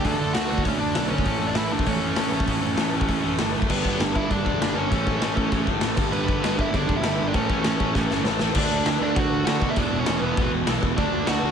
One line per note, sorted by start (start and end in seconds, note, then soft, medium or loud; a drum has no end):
0.04 0.20 D2 medium
0.04 0.17 D3 medium
0.04 0.19 A3 medium
0.04 0.19 D4 loud
0.04 0.34 A4 medium
0.04 0.36 A5 loud
0.04 kick medium
0.04 open hi-hat medium
0.19 0.34 D2 medium
0.19 0.34 D3 medium
0.19 0.34 A3 medium
0.19 0.33 D4 medium
0.33 0.50 D2 medium
0.33 0.47 D3 medium
0.33 0.49 A3 loud
0.33 0.49 D4 loud
0.33 0.64 F#4 medium
0.33 0.62 F#5 medium
0.33 snare loud
0.33 open hi-hat medium
0.49 0.65 D2 medium
0.49 0.63 D3 loud
0.49 0.64 A3 loud
0.49 0.62 D4 loud
0.58 kick medium
0.63 0.80 D2 medium
0.63 0.78 D3 medium
0.63 0.79 A3 medium
0.63 0.78 D4 medium
0.63 0.78 C#5 medium
0.63 kick medium
0.63 open hi-hat medium
0.68 0.80 C#4 medium
0.79 0.96 D2 medium
0.79 0.94 D3 medium
0.79 0.94 A3 medium
0.79 0.93 D4 medium
0.79 1.09 D4 medium
0.79 1.09 D5 loud
0.94 1.11 B1 medium
0.94 1.08 D3 loud
0.94 1.09 A3 loud
0.94 1.08 D4 loud
0.94 snare loud
0.94 open hi-hat medium
1.09 1.26 G1 medium
1.09 1.24 D3 medium
1.09 1.25 A3 medium
1.09 1.46 C#4 medium
1.09 1.25 D4 medium
1.09 1.49 C#5 loud
1.18 kick medium
1.24 1.41 A1 medium
1.24 1.41 A2 medium
1.24 1.40 E3 loud
1.24 1.40 A3 loud
1.24 kick medium
1.24 open hi-hat medium
1.40 1.57 A1 loud
1.40 1.55 A2 medium
1.40 1.55 E3 medium
1.40 1.56 A3 loud
1.47 1.56 D4 medium
1.47 1.55 D5 medium
1.55 1.72 A1 medium
1.55 1.71 A2 medium
1.55 1.70 E3 medium
1.55 1.69 A3 loud
1.55 1.71 E4 medium
1.55 1.70 E5 medium
1.55 snare loud
1.55 open hi-hat medium
1.70 1.87 A1 medium
1.70 1.84 A2 medium
1.70 1.85 E3 loud
1.70 1.85 A3 loud
1.70 1.86 D4 medium
1.70 1.86 D5 medium
1.79 kick medium
1.85 2.16 A1 medium
1.85 2.01 A2 medium
1.85 2.00 E3 medium
1.85 1.99 A3 medium
1.85 3.36 C#4 medium
1.85 3.35 C#5 medium
1.85 kick medium
1.85 open hi-hat medium
2.00 2.14 A2 medium
2.00 2.15 E3 medium
2.00 2.15 A3 medium
2.15 2.31 A1 medium
2.15 2.30 A2 loud
2.15 2.30 E3 loud
2.15 2.30 A3 loud
2.15 snare loud
2.15 open hi-hat medium
2.31 2.47 A1 medium
2.31 2.44 A2 medium
2.31 2.45 E3 medium
2.31 2.45 A3 medium
2.40 kick medium
2.45 2.63 A1 medium
2.45 2.62 A2 medium
2.45 2.61 E3 medium
2.45 2.60 A3 loud
2.45 kick medium
2.45 open hi-hat medium
2.61 2.78 A1 medium
2.61 2.76 A2 medium
2.61 2.76 E3 medium
2.61 2.77 A3 medium
2.77 2.93 A1 medium
2.77 2.93 A2 medium
2.77 2.92 E3 loud
2.77 2.92 A3 loud
2.77 snare loud
2.77 open hi-hat medium
2.93 3.09 A1 medium
2.93 3.06 A2 medium
2.93 3.07 E3 medium
2.93 3.07 A3 loud
3.01 kick medium
3.08 3.23 A1 medium
3.08 3.22 A2 medium
3.08 3.22 E3 medium
3.08 3.21 A3 medium
3.08 kick medium
3.08 open hi-hat soft
3.23 3.39 A1 medium
3.23 3.38 A2 medium
3.23 3.38 E3 medium
3.23 3.39 A3 loud
3.39 3.54 G1 medium
3.39 3.54 A2 loud
3.39 3.53 E3 loud
3.39 3.52 A3 loud
3.39 snare loud
3.39 open hi-hat medium
3.53 3.70 F#1 medium
3.53 3.68 A2 medium
3.53 3.69 E3 medium
3.53 3.68 A3 medium
3.62 kick medium
3.68 3.84 G1 medium
3.68 3.84 G2 medium
3.68 3.84 D3 loud
3.68 3.83 G3 loud
3.68 3.98 B3 medium
3.68 3.99 B4 loud
3.68 kick loud
3.68 crash loud
3.68 crash medium
3.85 3.99 G1 medium
3.85 3.99 G2 medium
3.85 4.00 D3 medium
3.85 4.00 G3 loud
3.85 kick medium
4.00 4.14 G1 medium
4.00 4.15 G2 medium
4.00 4.15 D3 loud
4.00 4.14 G3 medium
4.00 snare loud
4.00 crash medium
4.15 4.29 G1 medium
4.15 4.29 G2 medium
4.15 4.30 D3 medium
4.15 4.31 G3 loud
4.15 4.30 E4 medium
4.15 4.30 E5 loud
4.15 kick medium
4.30 4.45 G1 medium
4.30 4.46 G2 medium
4.30 4.45 D3 medium
4.30 4.45 G3 medium
4.30 4.74 D4 medium
4.30 4.77 D5 medium
4.30 kick medium
4.30 crash medium
4.46 4.60 E1 medium
4.46 4.59 G2 medium
4.46 4.60 D3 loud
4.46 4.60 G3 loud
4.46 kick medium
4.61 4.75 G1 medium
4.61 4.75 G2 medium
4.61 4.75 D3 medium
4.61 4.74 G3 medium
4.61 snare loud
4.61 crash medium
4.75 4.90 G1 medium
4.75 4.91 G2 medium
4.75 4.90 D3 medium
4.75 4.90 G3 medium
4.75 5.65 C#4 medium
4.75 5.64 C#5 medium
4.90 5.05 A1 medium
4.90 5.05 A2 medium
4.90 5.05 E3 loud
4.90 5.04 A3 loud
4.90 kick loud
4.90 crash medium
5.05 5.21 A1 medium
5.05 5.20 A2 medium
5.05 5.21 E3 medium
5.05 5.21 A3 medium
5.05 kick medium
5.21 5.36 A1 medium
5.21 5.36 A2 loud
5.21 5.36 E3 loud
5.21 5.35 A3 loud
5.21 snare loud
5.21 crash medium
5.36 5.51 A1 medium
5.36 5.50 A2 medium
5.36 5.51 E3 loud
5.36 5.52 A3 loud
5.36 kick medium
5.51 5.66 A1 medium
5.51 5.66 A2 medium
5.51 5.65 E3 medium
5.51 5.65 A3 loud
5.51 kick medium
5.51 crash medium
5.66 5.81 G1 medium
5.66 5.80 A2 loud
5.66 5.81 E3 loud
5.66 5.81 A3 loud
5.66 kick medium
5.81 5.97 A1 medium
5.81 5.96 A2 medium
5.81 5.96 E3 medium
5.81 5.97 A3 loud
5.81 snare loud
5.81 crash medium
5.95 6.12 G1 medium
5.95 6.11 G2 loud
5.95 6.10 D3 medium
5.95 6.10 G3 loud
5.95 kick loud
5.95 crash medium
6.11 6.27 G1 medium
6.11 6.25 G2 medium
6.11 6.26 D3 medium
6.11 6.26 G3 loud
6.11 6.56 B3 medium
6.11 6.60 B4 medium
6.11 crash medium
6.26 6.43 G1 medium
6.26 6.41 G2 medium
6.26 6.41 D3 medium
6.26 6.40 G3 loud
6.26 kick medium
6.41 6.55 G2 medium
6.41 6.55 D3 medium
6.41 6.55 G3 loud
6.41 snare loud
6.41 crash medium
6.45 6.58 G1 medium
6.56 6.73 G1 loud
6.56 6.72 G2 medium
6.56 6.71 D3 loud
6.56 6.71 G3 loud
6.56 kick medium
6.61 6.74 E4 medium
6.61 6.74 E5 loud
6.72 6.88 G1 medium
6.72 6.86 G2 medium
6.72 6.87 D3 medium
6.72 6.87 G3 medium
6.72 6.96 D4 medium
6.72 6.98 D5 medium
6.72 kick medium
6.72 crash medium
6.87 7.03 E1 medium
6.87 7.03 G2 loud
6.87 7.03 D3 loud
6.87 7.02 G3 loud
6.87 kick medium
6.96 7.25 E4 medium
6.96 7.28 E5 loud
7.03 7.19 G1 medium
7.03 7.17 G2 medium
7.03 7.17 D3 medium
7.03 7.18 G3 loud
7.03 snare loud
7.03 crash medium
7.18 7.34 G1 medium
7.18 7.33 G2 medium
7.18 7.33 D3 medium
7.18 7.33 G3 medium
7.27 7.34 D4 medium
7.27 7.35 D5 medium
7.33 7.48 A1 medium
7.33 7.49 A2 loud
7.33 7.48 E3 loud
7.33 7.47 A3 loud
7.33 8.22 C#4 medium
7.33 8.22 C#5 medium
7.33 kick loud
7.33 crash medium
7.49 7.64 A1 medium
7.49 7.62 A2 medium
7.49 7.63 E3 medium
7.49 7.63 A3 loud
7.49 kick medium
7.63 7.79 A1 medium
7.63 7.78 A2 medium
7.63 7.78 E3 loud
7.63 7.77 A3 loud
7.63 snare loud
7.63 crash medium
7.78 7.94 A1 medium
7.78 7.92 A2 medium
7.78 7.93 E3 loud
7.78 7.94 A3 loud
7.78 kick medium
7.94 8.09 A1 medium
7.94 8.08 A2 medium
7.94 8.08 E3 medium
7.94 8.07 A3 medium
7.94 kick medium
7.94 snare medium
8.08 8.24 G1 medium
8.08 8.23 A2 medium
8.08 8.23 E3 medium
8.08 8.24 A3 loud
8.08 snare medium
8.24 8.40 A1 medium
8.24 8.40 A2 medium
8.24 8.39 E3 loud
8.24 8.38 A3 loud
8.24 snare medium
8.39 8.55 A1 medium
8.39 8.55 A2 medium
8.39 8.55 E3 medium
8.39 8.54 A3 medium
8.39 snare medium
8.55 8.65 D2 medium
8.55 8.83 D3 medium
8.55 8.84 A3 loud
8.55 8.85 D4 loud
8.55 8.85 D4 medium
8.55 8.85 D5 loud
8.55 kick loud
8.55 crash loud
8.55 crash medium
8.71 8.81 D2 loud
8.85 8.95 D2 medium
8.85 9.00 D3 medium
8.85 9.00 A3 medium
8.85 8.99 D4 loud
8.85 snare loud
8.85 crash medium
9.00 9.11 D2 medium
9.00 9.15 D3 medium
9.00 9.15 A3 medium
9.00 9.15 D4 medium
9.00 9.16 D4 medium
9.00 9.17 D5 loud
9.15 9.26 D2 medium
9.15 9.45 D3 medium
9.15 9.45 A3 loud
9.15 9.46 D4 loud
9.15 9.44 F#4 medium
9.15 9.47 F#5 medium
9.15 kick loud
9.15 crash medium
9.32 9.42 D2 medium
9.46 9.62 D3 medium
9.46 9.56 D3 medium
9.46 9.62 A3 loud
9.46 9.60 D4 loud
9.46 9.68 F#4 medium
9.46 9.70 F#5 medium
9.46 snare loud
9.46 crash medium
9.62 9.71 B2 medium
9.62 9.76 D3 medium
9.62 9.76 A3 medium
9.62 9.76 D4 medium
9.62 kick medium
9.70 9.77 E4 medium
9.70 9.78 E5 medium
9.76 9.86 E1 medium
9.76 10.06 E2 loud
9.76 10.06 B2 loud
9.76 10.07 E3 loud
9.76 9.98 D4 medium
9.76 10.00 D5 medium
9.76 kick loud
9.76 crash medium
9.94 10.02 E1 loud
10.00 10.21 C#4 medium
10.00 10.21 C#5 loud
10.06 10.17 E1 medium
10.06 10.23 E2 loud
10.06 10.21 B2 loud
10.06 10.21 E3 loud
10.06 snare loud
10.06 crash medium
10.21 10.31 E1 loud
10.21 10.36 E2 medium
10.21 10.37 B2 medium
10.21 10.38 E3 medium
10.21 10.51 B3 medium
10.21 10.50 B4 medium
10.37 10.47 E1 loud
10.37 10.66 E2 medium
10.37 10.67 B2 loud
10.37 10.67 E3 loud
10.37 kick loud
10.37 crash medium
10.53 10.62 E1 medium
10.67 10.77 B1 medium
10.67 10.82 E2 loud
10.67 10.81 B2 medium
10.67 10.81 E3 loud
10.67 snare loud
10.67 crash medium
10.82 10.92 E1 loud
10.82 10.97 E2 medium
10.82 10.96 B2 medium
10.82 10.96 E3 medium
10.82 kick medium
10.96 11.08 D2 medium
10.96 11.26 D3 loud
10.96 11.26 A3 loud
10.96 11.25 D4 medium
10.96 11.27 D4 loud
10.96 11.28 D5 loud
10.96 kick loud
10.96 crash medium
11.13 11.22 D2 loud
11.27 11.38 D2 medium
11.27 11.42 D3 medium
11.27 11.41 A3 loud
11.27 11.41 D4 loud
11.27 11.51 F#4 medium
11.27 11.51 F#5 loud
11.27 snare loud
11.27 crash medium
11.42 11.51 D2 medium
11.42 11.51 D3 medium
11.42 11.51 A3 loud
11.42 11.51 D4 loud